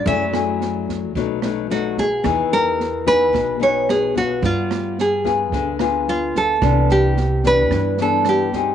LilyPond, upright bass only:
\new Staff \with { instrumentName = "Upright bass" } { \clef bass \time 4/4 \key e \phrygian \tempo 4 = 110 fis,2 b,,2 | e,2 b,,2 | g,2 d,2 | c,2 g,2 | }